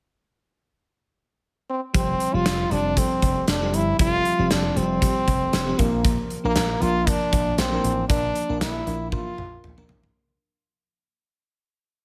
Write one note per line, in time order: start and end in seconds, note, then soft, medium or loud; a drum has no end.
1.69 1.81 C4 medium
1.94 2.13 F1 loud
1.94 2.26 F3 medium
1.94 2.26 G3 medium
1.94 2.26 C4 medium
1.94 2.36 C4 loud
1.94 2.26 G4 medium
1.94 kick loud
1.94 closed hi-hat medium
2.20 closed hi-hat medium
2.34 2.42 F1 medium
2.34 2.65 F3 medium
2.34 2.65 G3 medium
2.34 2.65 C4 medium
2.34 2.73 F4 loud
2.34 2.65 G4 medium
2.45 2.64 F1 medium
2.45 snare loud
2.45 closed hi-hat medium
2.71 3.00 F1 medium
2.71 2.92 F3 medium
2.71 2.93 G3 medium
2.71 2.93 C4 medium
2.71 2.99 D4 loud
2.71 2.93 G4 medium
2.71 closed hi-hat soft
2.96 3.49 F3 medium
2.96 3.49 G3 medium
2.96 3.49 C4 medium
2.96 3.48 C4 loud
2.96 3.49 A4 medium
2.96 kick medium
2.96 closed hi-hat medium
3.22 3.41 F1 loud
3.22 kick medium
3.22 closed hi-hat medium
3.48 3.73 F1 loud
3.48 3.76 D4 medium
3.48 snare loud
3.48 closed hi-hat medium
3.61 3.93 F3 medium
3.61 3.93 G3 medium
3.61 3.93 C4 medium
3.61 3.93 G4 medium
3.73 3.92 G1 medium
3.73 4.00 E4 loud
3.73 closed hi-hat medium
3.99 4.18 F1 medium
3.99 4.31 F3 medium
3.99 4.31 G3 medium
3.99 4.31 C4 medium
3.99 4.53 F4 loud
3.99 4.31 G4 medium
3.99 kick loud
3.99 closed hi-hat medium
4.25 closed hi-hat medium
4.38 4.47 F1 loud
4.38 4.69 F3 medium
4.38 4.70 G3 medium
4.38 4.70 C4 medium
4.38 4.70 G4 medium
4.51 4.69 F1 loud
4.51 4.78 D4 loud
4.51 snare loud
4.51 closed hi-hat medium
4.76 5.05 F1 medium
4.76 4.97 F3 medium
4.76 4.98 G3 medium
4.76 4.98 C4 medium
4.76 5.81 C4 loud
4.76 4.98 G4 medium
4.76 closed hi-hat medium
5.01 5.54 F3 medium
5.01 5.54 G3 medium
5.01 5.54 C4 medium
5.01 5.54 G4 medium
5.01 kick medium
5.01 closed hi-hat medium
5.28 5.46 F1 loud
5.28 kick medium
5.28 closed hi-hat medium
5.53 5.72 F1 loud
5.53 snare loud
5.53 closed hi-hat medium
5.67 5.77 F3 medium
5.67 5.79 G3 medium
5.67 5.79 C4 medium
5.67 5.79 G4 medium
5.78 6.16 A#1 loud
5.78 6.31 F3 medium
5.78 6.31 A#3 medium
5.78 6.17 A#3 medium
5.78 6.31 D4 medium
5.78 6.31 A#4 medium
5.78 kick medium
5.78 closed hi-hat medium
6.05 kick loud
6.05 closed hi-hat medium
6.30 closed hi-hat medium
6.44 6.53 A#1 loud
6.44 6.75 F3 medium
6.44 6.75 A#3 medium
6.44 6.83 A#3 loud
6.44 6.75 D4 medium
6.44 6.75 A#4 medium
6.56 6.74 A#1 loud
6.56 snare loud
6.56 closed hi-hat medium
6.81 7.10 A#1 medium
6.81 7.03 F3 medium
6.81 7.03 A#3 medium
6.81 7.03 D4 medium
6.81 7.10 F4 loud
6.81 7.03 A#4 medium
6.81 closed hi-hat medium
7.07 7.59 F3 medium
7.07 7.59 A#3 medium
7.07 7.59 D4 medium
7.07 7.60 D4 loud
7.07 7.60 A#4 medium
7.07 kick medium
7.07 closed hi-hat loud
7.33 7.51 A#1 loud
7.33 kick medium
7.33 closed hi-hat medium
7.58 7.77 A#1 loud
7.58 8.08 C4 medium
7.58 snare loud
7.58 closed hi-hat medium
7.72 8.03 F3 medium
7.72 8.03 A#3 medium
7.72 8.03 D4 medium
7.72 8.03 A#4 medium
7.84 8.03 A1 medium
7.84 closed hi-hat medium
8.08 8.28 A#1 loud
8.08 8.41 F3 medium
8.08 8.41 A#3 medium
8.08 8.57 D4 loud
8.08 8.42 D4 medium
8.08 8.42 A#4 medium
8.08 kick loud
8.08 closed hi-hat medium
8.35 closed hi-hat medium
8.49 8.58 A#1 medium
8.49 8.80 F3 medium
8.49 8.80 A#3 medium
8.49 8.80 D4 medium
8.49 8.80 A#4 medium
8.61 8.79 A#1 loud
8.61 9.08 E4 loud
8.61 snare loud
8.61 closed hi-hat medium
8.86 9.15 A#1 medium
8.86 9.07 F3 medium
8.86 9.08 A#3 medium
8.86 9.08 D4 medium
8.86 9.08 A#4 medium
8.86 closed hi-hat medium
9.12 9.64 F3 medium
9.12 9.64 A#3 medium
9.12 9.64 D4 medium
9.12 9.85 F4 loud
9.12 9.65 A#4 medium
9.12 kick medium
9.12 high tom medium
9.38 9.56 A#1 medium
9.38 mid tom medium
9.64 9.82 A#1 medium
9.64 mid tom medium
9.77 10.08 F3 medium
9.77 10.08 A#3 medium
9.77 10.08 D4 medium
9.77 10.09 A#4 medium
9.77 mid tom medium
9.89 10.08 A1 medium
9.89 floor tom loud
10.03 floor tom medium